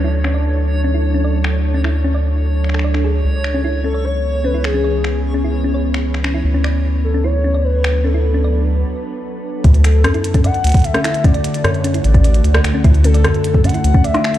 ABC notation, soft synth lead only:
X:1
M:4/4
L:1/8
Q:1/4=150
K:Dlyd
V:1 name="Soft synth lead"
z8 | z8 | z3 A c2 B G- | G4- G z3 |
z3 A c2 B2 | A4 z4 | z A3 f2 e2 | d2 c2 d3 z |
z A3 f2 e2 |]